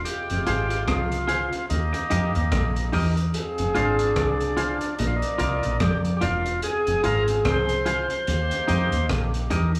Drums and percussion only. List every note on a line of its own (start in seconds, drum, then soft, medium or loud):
0.05 closed hi-hat medium
0.30 closed hi-hat medium
0.47 closed hi-hat medium
0.70 closed hi-hat medium
0.88 kick medium
0.88 cross-stick loud
0.88 closed hi-hat medium
1.12 closed hi-hat medium
1.29 closed hi-hat medium
1.53 closed hi-hat soft
1.70 closed hi-hat medium
1.94 closed hi-hat medium
2.11 closed hi-hat medium
2.35 closed hi-hat soft
2.52 kick loud
2.52 cross-stick medium
2.52 closed hi-hat medium
2.76 closed hi-hat medium
2.93 open hi-hat soft
3.17 closed hi-hat soft
3.34 closed hi-hat medium
3.58 closed hi-hat medium
3.75 closed hi-hat medium
3.99 closed hi-hat medium
4.16 kick medium
4.16 cross-stick loud
4.16 closed hi-hat medium
4.40 closed hi-hat medium
4.57 closed hi-hat medium
4.81 closed hi-hat soft
4.99 closed hi-hat medium
5.22 closed hi-hat medium
5.39 closed hi-hat medium
5.63 closed hi-hat soft
5.80 kick loud
5.80 cross-stick medium
5.80 closed hi-hat medium
6.05 closed hi-hat medium
6.21 closed hi-hat medium
6.46 closed hi-hat soft
6.62 closed hi-hat medium
6.87 closed hi-hat medium
7.04 closed hi-hat medium
7.28 closed hi-hat medium
7.45 kick medium
7.45 cross-stick loud
7.45 closed hi-hat medium
7.69 closed hi-hat medium
7.86 closed hi-hat medium
8.10 closed hi-hat soft
8.27 closed hi-hat medium
8.51 closed hi-hat medium
8.68 closed hi-hat medium
8.92 closed hi-hat soft
9.09 kick loud
9.09 cross-stick medium
9.09 closed hi-hat medium
9.34 closed hi-hat medium
9.51 closed hi-hat medium
9.75 closed hi-hat soft